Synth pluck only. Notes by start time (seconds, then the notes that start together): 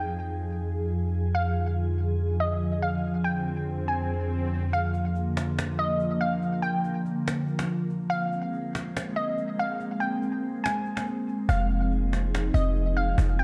1.35 F5
2.40 D#5
2.82 F5
3.24 G5
3.88 G#5
4.73 F5
5.79 D#5
6.21 F5
6.62 G5
8.10 F5
9.16 D#5
9.59 F5
10.00 G5
10.64 G#5
11.49 F5
12.54 D#5
12.97 F5
13.39 G5